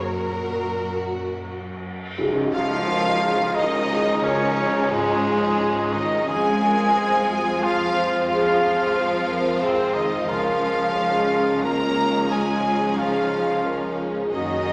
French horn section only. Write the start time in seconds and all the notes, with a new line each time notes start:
2.19 G#4
2.53 F4
2.87 A#4
3.24 G#4
3.58 A#4
3.92 G#4
4.24 A#4
4.56 G#4
4.90 F4
5.24 F4
5.57 F4
5.92 F4
6.28 G#4
6.63 A#4
6.98 C5
7.31 F4
8.30 G#4
8.96 C5
9.28 A#4
9.60 G#4
10.25 A#4
10.93 G#4
11.64 F4
12.31 F4
12.97 G#4
13.64 A#4
13.99 G#4
14.33 F#4
14.68 A#4